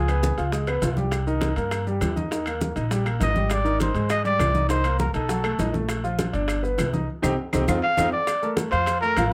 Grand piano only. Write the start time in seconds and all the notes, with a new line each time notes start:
0.09 B3 B4
0.38 F4 F5
0.52 G#3 G#4
0.68 B3 B4
0.82 F4 F5
0.97 G3 G4
1.27 D#3 D#4
1.56 A#3 A#4
1.87 G3 G4
2.16 D#4 D#5
2.31 D#3 D#4
2.46 A#3 A#4
2.76 D#4 D#5
2.91 G3 G4
3.05 A#3 A#4
3.20 D#4 D#5
3.35 G3 G4
3.65 D#3 D#4
3.94 G#3 G#4
4.24 G3 G4
4.54 D#4 D#5
4.69 D#3 D#4
4.85 A#3 A#4
5.15 D#4 D#5
5.29 F#3 F#4
5.44 A3 A4
5.59 D#4 D#5
5.73 A3 A4
6.04 F3 F4
6.33 D4 D5
6.63 B3 B4
6.93 D#4 D#5
7.22 C4 D#4 G4
7.53 C4 D#4 G4
7.68 C4 D#4 F4
7.98 C4 D#4 F4
8.42 A3 A4 A#4
8.71 F3 F4 F5
9.02 A3 A4 A#4
9.17 F3 F4 F5